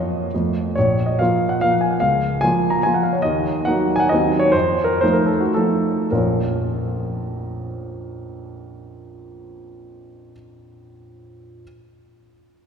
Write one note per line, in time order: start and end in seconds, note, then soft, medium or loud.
0.00 0.34 F2 soft
0.00 0.30 F3 soft
0.00 0.30 A#3 soft
0.00 0.30 F4 soft
0.00 0.32 C#5 soft
0.00 0.35 D#5 medium
0.34 0.75 F2 soft
0.34 0.73 F3 soft
0.34 0.73 A3 soft
0.34 0.73 F4 soft
0.75 1.19 A#1 medium
0.75 1.08 C#5 medium
1.06 1.18 D#5 medium
1.19 1.60 F3 soft
1.19 1.60 A#3 soft
1.19 1.60 F4 soft
1.19 1.49 F5 medium
1.49 1.63 F#5 medium
1.61 1.99 F3 soft
1.61 1.99 A#3 soft
1.61 1.99 F4 soft
1.61 1.72 F5 medium
1.71 1.82 F#5 medium
1.81 1.92 G#5 medium
1.91 2.01 F#5 soft
2.00 2.41 C#2 soft
2.00 2.42 F5 medium
2.41 2.81 F3 soft
2.41 2.81 A#3 soft
2.41 2.81 F4 soft
2.41 2.70 G#5 medium
2.70 2.84 A#5 medium
2.83 3.21 F3 soft
2.83 3.21 A#3 soft
2.83 3.21 F4 soft
2.83 2.94 G#5 medium
2.94 3.04 F#5 medium
3.03 3.14 F5 medium
3.13 3.23 C#5 medium
3.22 3.65 D#2 medium
3.22 3.65 D#5 medium
3.65 4.07 F#3 medium
3.65 4.07 A#3 soft
3.65 4.08 D#4 medium
3.65 3.96 F#5 medium
3.96 4.00 G#5 medium
4.00 4.11 F#5 medium
4.09 4.53 D#2 medium
4.09 4.51 F#3 soft
4.09 4.51 C4 soft
4.09 4.51 D#4 soft
4.09 4.39 D#5 medium
4.39 4.54 C#5 medium
4.52 5.00 F2 medium
4.52 4.84 C5 medium
4.84 5.02 A#4 medium
5.01 5.52 F3 soft
5.01 5.52 A3 soft
5.01 5.52 D#4 medium
5.01 5.15 C5 medium
5.13 5.27 A#4 medium
5.26 5.41 A4 medium
5.40 5.55 F#4 medium
5.54 6.09 F3 soft
5.54 6.09 A3 soft
5.54 6.10 D#4 soft
5.54 6.12 A4 medium
6.11 10.32 A#1 soft
6.11 10.32 F2 soft
6.11 10.33 F3 soft
6.11 10.32 A#3 soft
6.11 10.32 C#4 soft
6.11 10.33 F4 soft
6.11 10.31 A#4 medium